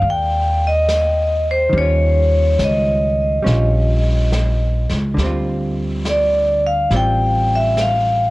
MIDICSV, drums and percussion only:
0, 0, Header, 1, 2, 480
1, 0, Start_track
1, 0, Tempo, 862069
1, 960, Time_signature, 4, 2, 24, 8
1, 4623, End_track
2, 0, Start_track
2, 0, Title_t, "Drums"
2, 8, Note_on_c, 9, 25, 40
2, 493, Note_on_c, 9, 38, 43
2, 493, Note_on_c, 9, 44, 50
2, 548, Note_off_c, 9, 38, 0
2, 548, Note_off_c, 9, 44, 0
2, 965, Note_off_c, 9, 25, 0
2, 965, Note_on_c, 9, 25, 30
2, 1442, Note_on_c, 9, 38, 41
2, 1442, Note_on_c, 9, 44, 48
2, 1498, Note_off_c, 9, 38, 0
2, 1498, Note_off_c, 9, 44, 0
2, 1928, Note_off_c, 9, 25, 0
2, 1928, Note_on_c, 9, 25, 36
2, 1928, Note_on_c, 9, 38, 30
2, 1984, Note_off_c, 9, 38, 0
2, 2407, Note_on_c, 9, 38, 44
2, 2407, Note_on_c, 9, 44, 47
2, 2463, Note_off_c, 9, 38, 0
2, 2463, Note_off_c, 9, 44, 0
2, 2725, Note_on_c, 9, 38, 25
2, 2781, Note_off_c, 9, 38, 0
2, 2884, Note_off_c, 9, 25, 0
2, 2884, Note_on_c, 9, 25, 28
2, 2884, Note_on_c, 9, 38, 25
2, 2940, Note_off_c, 9, 38, 0
2, 3370, Note_on_c, 9, 38, 41
2, 3370, Note_on_c, 9, 44, 58
2, 3425, Note_off_c, 9, 38, 0
2, 3425, Note_off_c, 9, 44, 0
2, 3845, Note_off_c, 9, 25, 0
2, 3845, Note_on_c, 9, 25, 32
2, 3845, Note_on_c, 9, 38, 26
2, 3901, Note_off_c, 9, 38, 0
2, 4326, Note_on_c, 9, 38, 45
2, 4326, Note_on_c, 9, 44, 48
2, 4382, Note_off_c, 9, 38, 0
2, 4382, Note_off_c, 9, 44, 0
2, 4623, Note_off_c, 9, 25, 0
2, 4623, End_track
0, 0, End_of_file